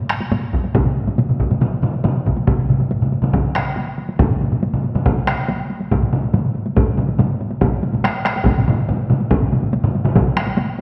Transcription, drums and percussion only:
0.09 taiko rim medium
0.21 taiko high medium
0.31 taiko low-mid medium
0.31 taiko high medium
0.53 taiko medium
0.64 taiko high medium
0.74 taiko loud
0.74 taiko low-mid medium
0.74 taiko mid medium
0.74 taiko high medium
0.85 taiko low-mid medium
0.85 taiko mid medium
1.07 taiko low-mid medium
1.07 taiko mid medium
1.07 taiko high medium
1.18 taiko low-mid medium
1.18 taiko mid medium
1.18 taiko high medium
1.29 taiko low-mid medium
1.29 taiko mid medium
1.40 taiko medium
1.40 taiko low-mid medium
1.40 taiko mid medium
1.51 taiko low-mid medium
1.51 taiko mid medium
1.51 taiko high medium
1.61 taiko low-mid medium
1.61 taiko mid medium
1.61 taiko high medium
1.82 taiko low-mid medium
1.82 taiko mid medium
1.93 taiko high soft
2.04 taiko low-mid medium
2.04 taiko mid loud
2.04 taiko high medium
2.26 taiko medium
2.26 taiko low-mid medium
2.26 taiko mid medium
2.37 taiko high medium
2.47 taiko medium
2.47 taiko low-mid medium
2.47 taiko mid medium
2.47 taiko high medium
2.58 taiko low-mid medium
2.58 taiko mid medium
2.69 taiko low-mid medium
2.69 taiko mid medium
2.69 taiko high soft
2.80 taiko low-mid medium
2.80 taiko mid medium
2.80 taiko high soft
2.91 taiko high medium
3.01 taiko low-mid medium
3.01 taiko mid medium
3.12 taiko high soft
3.22 taiko low-mid medium
3.22 taiko mid medium
3.22 taiko high soft
3.33 taiko medium
3.33 taiko low-mid medium
3.33 taiko mid medium
3.33 taiko high medium
3.55 taiko rim medium
3.55 taiko high soft
3.76 taiko high medium
3.98 taiko high soft
4.09 taiko high soft
4.19 taiko loud
4.19 taiko low-mid medium
4.19 taiko mid medium
4.19 taiko high medium
4.31 taiko low-mid medium
4.31 taiko mid medium
4.41 taiko low-mid medium
4.41 taiko mid medium
4.41 taiko high soft
4.52 taiko low-mid medium
4.52 taiko mid medium
4.52 taiko high soft
4.63 taiko high medium
4.74 taiko low-mid medium
4.74 taiko mid medium
4.84 taiko high soft
4.95 taiko low-mid medium
4.95 taiko mid medium
4.95 taiko high soft
5.06 taiko medium
5.06 taiko low-mid medium
5.06 taiko mid medium
5.06 taiko high medium
5.27 taiko rim medium
5.27 taiko high soft
5.48 taiko high medium
5.70 taiko high soft
5.81 taiko high soft
5.91 taiko medium
5.91 taiko low-mid medium
5.91 taiko mid medium
5.91 taiko high medium
6.02 taiko low-mid medium
6.02 taiko mid medium
6.13 taiko low-mid medium
6.13 taiko mid medium
6.13 taiko high soft
6.23 taiko high soft
6.34 taiko low-mid medium
6.34 taiko mid medium
6.34 taiko high medium
6.55 taiko high soft
6.66 taiko high medium
6.76 taiko medium
6.76 taiko low-mid medium
6.76 taiko mid medium
6.76 taiko high medium
6.86 taiko low-mid medium
6.86 taiko mid medium
6.97 taiko low-mid medium
6.97 taiko mid medium
6.97 taiko high medium
7.09 taiko high medium
7.19 taiko low-mid medium
7.19 taiko mid medium
7.19 taiko high medium
7.41 taiko high soft
7.51 taiko high medium
7.61 taiko medium
7.61 taiko low-mid medium
7.61 taiko mid medium
7.61 taiko high medium
7.83 taiko high medium
7.93 taiko low-mid medium
7.93 taiko mid medium
7.93 taiko high soft
8.04 taiko rim medium
8.04 taiko high medium
8.25 taiko rim medium
8.25 taiko high medium
8.36 taiko high medium
8.46 taiko medium
8.46 taiko low-mid medium
8.46 taiko mid medium
8.46 taiko high medium
8.58 taiko low-mid medium
8.58 taiko mid medium
8.68 taiko low-mid medium
8.68 taiko mid medium
8.68 taiko high medium
8.79 taiko high soft
8.89 taiko low-mid medium
8.89 taiko mid loud
8.89 taiko high medium
9.10 taiko low-mid medium
9.10 taiko mid medium
9.10 taiko high soft
9.20 taiko high soft
9.31 taiko medium
9.31 taiko low-mid medium
9.31 taiko mid medium
9.31 taiko high medium
9.42 taiko low-mid medium
9.42 taiko mid medium
9.52 taiko low-mid medium
9.52 taiko mid medium
9.52 taiko high medium
9.63 taiko low-mid medium
9.63 taiko mid medium
9.63 taiko high soft
9.73 taiko high medium
9.84 taiko low-mid loud
9.84 taiko mid medium
9.95 taiko high medium
10.05 taiko low-mid medium
10.05 taiko mid loud
10.05 taiko high medium
10.15 taiko medium
10.15 taiko low-mid loud
10.15 taiko mid medium
10.15 taiko high medium
10.36 taiko rim medium
10.36 taiko high medium
10.47 taiko high medium
10.57 taiko high medium

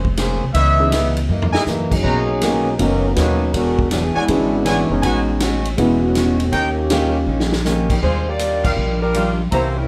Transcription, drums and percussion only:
0.05 kick medium
0.17 snare medium
0.17 hi-hat pedal medium
0.17 ride medium
0.55 kick soft
0.55 ride medium
0.92 snare medium
0.92 hi-hat pedal medium
0.92 ride medium
1.17 ride soft
1.42 floor tom medium
1.54 snare medium
1.66 snare medium
1.66 hi-hat pedal soft
1.92 kick medium
1.92 crash medium
2.04 kick soft
2.41 snare medium
2.41 hi-hat pedal medium
2.41 ride medium
2.79 kick soft
2.79 ride medium
3.16 snare medium
3.16 hi-hat pedal medium
3.16 ride medium
3.54 kick soft
3.54 ride medium
3.79 kick medium
3.91 snare medium
3.91 hi-hat pedal medium
3.91 ride medium
4.28 kick soft
4.28 ride medium
4.66 snare medium
4.66 hi-hat pedal medium
4.66 ride medium
5.03 kick soft
5.03 ride medium
5.40 snare medium
5.40 hi-hat pedal medium
5.40 ride medium
5.65 ride medium
5.78 kick soft
5.78 ride medium
6.15 snare medium
6.15 hi-hat pedal medium
6.15 ride medium
6.40 ride soft
6.53 kick soft
6.53 ride medium
6.90 snare medium
6.90 hi-hat pedal medium
6.90 ride medium
7.40 snare medium
7.52 snare medium
7.65 snare medium
7.65 hi-hat pedal medium
7.90 kick medium
7.90 crash medium
8.02 kick soft
8.39 hi-hat pedal medium
8.39 ride medium
8.64 kick medium
8.64 crash medium
9.14 hi-hat pedal soft
9.14 ride medium
9.52 kick soft
9.52 ride medium

